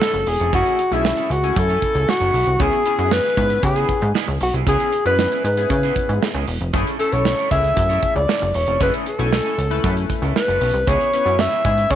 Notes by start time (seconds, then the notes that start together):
Already playing: A4
0.00 C#4 E4 A4, snare
0.14 F#1, muted clean electric guitar stroke, closed hi-hat
0.27 E1 G#4, muted clean electric guitar stroke, open hi-hat
0.40 F1 C#4 E4 A4, closed hi-hat
0.52 F#1 A3 C#4 E4 F#4 G#4 A4, kick, closed hi-hat
0.66 closed hi-hat
0.79 muted clean electric guitar stroke, closed hi-hat
0.91 B1 A3 C#4 E4 G#4 A4, closed hi-hat
1.05 muted clean electric guitar stroke, snare
1.17 C#4 E4 A4, closed hi-hat
1.30 C#2 F#4, muted clean electric guitar stroke, closed hi-hat
1.43 A3 C#4 E4 G#5, muted clean electric guitar stroke, closed hi-hat
1.56 F#2 A4, muted clean electric guitar stroke, kick, closed hi-hat
1.69 C#4 E4 A4, closed hi-hat
1.82 muted clean electric guitar stroke, kick, closed hi-hat
1.95 C#2, muted clean electric guitar stroke, closed hi-hat
2.08 F#4, muted clean electric guitar stroke, snare
2.20 F#1 C#4 E4 A4, closed hi-hat
2.33 B1 C#4 E4 A4, open hi-hat
2.46 C2, muted clean electric guitar stroke, closed hi-hat
2.59 C#2 B3 C#4 E4 G#4, kick, closed hi-hat
2.73 closed hi-hat
2.85 B3 C#4 E4 G#4, muted clean electric guitar stroke, closed hi-hat
2.98 F#2 B3 E4 G#4, closed hi-hat
3.11 B4, snare
3.24 B3 E4 G#4, closed hi-hat
3.37 G#2 B3 C#4 E4 B4, muted clean electric guitar stroke, kick, closed hi-hat
3.50 muted clean electric guitar stroke, closed hi-hat
3.63 C#3 G#4, muted clean electric guitar stroke, kick, closed hi-hat
3.75 B3 E4 G#4, closed hi-hat
3.89 muted clean electric guitar stroke, kick, closed hi-hat
4.02 G#2, muted clean electric guitar stroke, closed hi-hat
4.15 B3 E4 G#4, snare
4.27 C#2, muted clean electric guitar stroke, closed hi-hat
4.40 B1 F#4, muted clean electric guitar stroke, open hi-hat
4.54 C2 B3 E4 G#4, closed hi-hat
4.67 C#2 B3 C#4 E4 G#4, kick, closed hi-hat
4.80 closed hi-hat
4.92 muted clean electric guitar stroke, closed hi-hat
5.05 F#2 B3 C#4 E4 G#4 B4, closed hi-hat
5.19 snare
5.32 B3 E4 G#4, closed hi-hat
5.44 G#2 B4, muted clean electric guitar stroke, closed hi-hat
5.57 B3 C#4 E4 G#4, muted clean electric guitar stroke, closed hi-hat
5.70 C#3 B4, muted clean electric guitar stroke, kick, closed hi-hat
5.83 B3 E4 G#4, closed hi-hat
5.96 muted clean electric guitar stroke, kick, closed hi-hat
6.09 G#2, muted clean electric guitar stroke, closed hi-hat
6.22 muted clean electric guitar stroke, snare
6.34 C#2 B3 E4 G#4, closed hi-hat
6.47 E1, open hi-hat
6.61 F1, muted clean electric guitar stroke, closed hi-hat
6.73 F#1 A3 C#4 E4 G#4 A4, kick, closed hi-hat
6.87 closed hi-hat
6.99 A3 C#4 E4 A4, muted clean electric guitar stroke, closed hi-hat
7.12 B1 C#4 E4 A4 C#5, closed hi-hat
7.25 snare
7.38 C#4 E4 A4, closed hi-hat
7.51 C#2 A3 C#4 E4 G#4 E5, kick, closed hi-hat
7.64 muted clean electric guitar stroke, closed hi-hat
7.77 F#2, muted clean electric guitar stroke, kick, closed hi-hat
7.89 C#4 E4 A4, closed hi-hat
8.02 muted clean electric guitar stroke, kick, closed hi-hat
8.16 C#2 D5, muted clean electric guitar stroke, closed hi-hat
8.28 C#4 E4 A4, snare
8.41 F#1, muted clean electric guitar stroke, closed hi-hat
8.54 E1 C#5, muted clean electric guitar stroke, open hi-hat
8.67 F1 C#4 E4 A4, closed hi-hat
8.80 F#1 A3 C#4 E4 G#4 A4 B4, kick, closed hi-hat
8.94 closed hi-hat
9.06 A4, muted clean electric guitar stroke, closed hi-hat
9.18 B1 A3 C#4 E4 A4 G#5, closed hi-hat
9.32 muted clean electric guitar stroke, snare
9.45 C#4 E4 A4, closed hi-hat
9.58 C#2, muted clean electric guitar stroke, closed hi-hat
9.70 A3 C#4 E4 B4, muted clean electric guitar stroke, closed hi-hat
9.84 F#2 C#4 E4 A4, kick, closed hi-hat
9.97 muted clean electric guitar stroke, closed hi-hat
10.09 muted clean electric guitar stroke, kick, closed hi-hat
10.22 C#2 C#4 E4 A4, closed hi-hat
10.36 B4, snare
10.48 F#1 C#4 E4 A4, closed hi-hat
10.61 B1 C#4 E4 A4, open hi-hat
10.74 C2, muted clean electric guitar stroke, closed hi-hat
10.87 C#2 B3 C#4 E4 G#4 C#5, kick, closed hi-hat
11.01 closed hi-hat
11.13 B3 C#4 E4 B4, muted clean electric guitar stroke, closed hi-hat
11.26 F#2 B3 E4 G#4, closed hi-hat
11.39 E5, snare
11.51 B3 E4 G#4, closed hi-hat
11.65 G#2 B3 C#4 E4 G#4, kick, closed hi-hat
11.77 muted clean electric guitar stroke, closed hi-hat
11.90 C#3 C#5, muted clean electric guitar stroke, kick, closed hi-hat